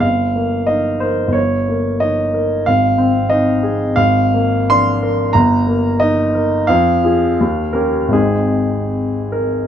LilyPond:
\new Staff \with { instrumentName = "Grand piano" } { \time 2/4 \key aes \major \tempo 4 = 90 << { f''4 ees''8 c''8 | des''4 ees''4 | f''4 ees''8 r8 | f''4 c'''4 |
bes''4 ees''4 | f''4. bes'8 | aes'4. bes'8 | } \\ { g,,8 bes8 ees'8 bes'8 | g,,8 bes8 ees'8 bes'8 | aes,,8 c'8 ees'8 aes'8 | aes,,8 bes8 d'8 bes'8 |
g,,8 bes8 ees'8 bes'8 | f,8 <f' aes'>8 ees,8 <des' g'>8 | <aes,, aes c' ees'>2 | } >> }